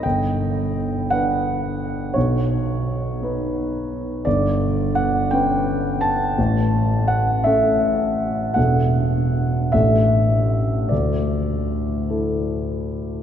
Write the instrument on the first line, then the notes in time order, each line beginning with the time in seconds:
grand piano
0.03 G1 G5
1.10 D4 B4 F#5
2.14 B1 C#5
3.22 D#4 B4
4.25 G1 D5
4.95 F#5
5.31 C#4 B4 G5
6.01 A5
6.38 A1
7.08 F#5
7.44 C#4 A4 E5
8.54 E1 D4 A4 F#5
9.72 A1 D4 A4 E5
10.89 D2 D5
12.10 E4 A4